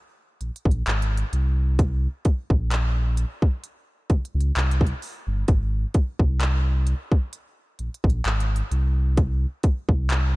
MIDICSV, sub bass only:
0, 0, Header, 1, 2, 480
1, 0, Start_track
1, 0, Key_signature, -4, "major"
1, 0, Tempo, 923077
1, 931, Time_signature, 4, 2, 24, 8
1, 5387, End_track
2, 0, Start_track
2, 0, Title_t, "Sub bass"
2, 0, Program_c, 0, 38
2, 212, Note_on_c, 0, 34, 48
2, 264, Note_off_c, 0, 34, 0
2, 340, Note_on_c, 0, 34, 94
2, 430, Note_off_c, 0, 34, 0
2, 451, Note_on_c, 0, 32, 106
2, 646, Note_off_c, 0, 32, 0
2, 691, Note_on_c, 0, 36, 102
2, 1079, Note_off_c, 0, 36, 0
2, 1301, Note_on_c, 0, 34, 96
2, 1689, Note_off_c, 0, 34, 0
2, 2131, Note_on_c, 0, 37, 50
2, 2183, Note_off_c, 0, 37, 0
2, 2260, Note_on_c, 0, 37, 90
2, 2349, Note_off_c, 0, 37, 0
2, 2372, Note_on_c, 0, 36, 94
2, 2566, Note_off_c, 0, 36, 0
2, 2741, Note_on_c, 0, 31, 88
2, 2830, Note_off_c, 0, 31, 0
2, 2852, Note_on_c, 0, 32, 107
2, 3046, Note_off_c, 0, 32, 0
2, 3221, Note_on_c, 0, 36, 91
2, 3610, Note_off_c, 0, 36, 0
2, 4053, Note_on_c, 0, 34, 50
2, 4104, Note_off_c, 0, 34, 0
2, 4180, Note_on_c, 0, 34, 92
2, 4270, Note_off_c, 0, 34, 0
2, 4290, Note_on_c, 0, 32, 108
2, 4485, Note_off_c, 0, 32, 0
2, 4531, Note_on_c, 0, 36, 100
2, 4920, Note_off_c, 0, 36, 0
2, 5141, Note_on_c, 0, 36, 97
2, 5387, Note_off_c, 0, 36, 0
2, 5387, End_track
0, 0, End_of_file